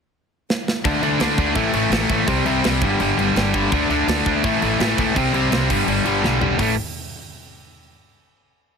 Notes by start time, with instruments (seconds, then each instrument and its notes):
0.50 snare
0.68 snare
0.85 upright bass D2, overdriven electric guitar D3 A3 D4, kick, crash
1.02 upright bass D2, overdriven electric guitar D3 A3 D4, crash
1.19 upright bass D2, overdriven electric guitar D3 A3 D4, snare, crash
1.38 upright bass D2, overdriven electric guitar D3 A3 D4, kick, crash
1.55 upright bass A1, overdriven electric guitar A2 E3 A3, kick, crash
1.73 upright bass A1, overdriven electric guitar A2 E3 A3, crash
1.90 upright bass A1, overdriven electric guitar A2 E3 A3, snare, crash
2.10 upright bass A1, overdriven electric guitar A2 E3 A3, kick, crash
2.27 upright bass C2, overdriven electric guitar C3 G3 C4, kick, crash
2.45 upright bass C2, overdriven electric guitar C3 G3 C4, crash
2.64 upright bass C2, overdriven electric guitar C3 G3 C4, snare, crash
2.82 upright bass G1, overdriven electric guitar G2 D3 G3, kick, crash
3.00 upright bass G1, overdriven electric guitar G2 D3 G3, crash
3.17 upright bass G1, overdriven electric guitar G2 D3 G3, crash
3.35 upright bass G1, overdriven electric guitar G2 D3 G3, snare, crash
3.54 overdriven electric guitar G2 D3 G3, kick, crash
3.71 upright bass D2, overdriven electric guitar D3 A3 D4, kick, crash
3.89 upright bass D2, overdriven electric guitar D3 A3 D4, crash
4.07 upright bass D2, overdriven electric guitar D3 A3 D4, snare, crash
4.26 upright bass D2, overdriven electric guitar D3 A3 D4, kick, crash
4.43 upright bass A1, overdriven electric guitar A2 E3 A3, kick, crash
4.62 upright bass A1, overdriven electric guitar A2 E3 A3, crash
4.79 upright bass A1, overdriven electric guitar A2 E3 A3, snare, crash
4.98 upright bass C#2, overdriven electric guitar A2 E3 A3, kick, crash
5.15 upright bass C2, overdriven electric guitar C3 G3 C4, kick, crash
5.33 upright bass C2, overdriven electric guitar C3 G3 C4, crash
5.51 upright bass C2, overdriven electric guitar C3 G3 C4, snare, crash
5.69 upright bass G1, overdriven electric guitar G2 D3 G3, kick, crash
5.87 upright bass G1, overdriven electric guitar G2 D3 G3, crash
6.05 upright bass G1, overdriven electric guitar G2 D3 G3, crash
6.22 upright bass B1, overdriven electric guitar G2 D3 G3, snare
6.40 overdriven electric guitar G2 D3 G3, floor tom
6.58 upright bass A1, overdriven electric guitar A2 E3 A3, kick, open hi-hat